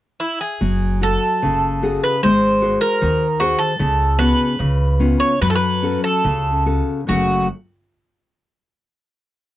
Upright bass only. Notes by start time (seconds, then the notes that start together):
0.61 F#1
1.45 F#1
2.25 G#1
3.03 D#2
3.80 C#2
4.60 C#2
5.42 F#2
6.25 C#2
7.10 F#1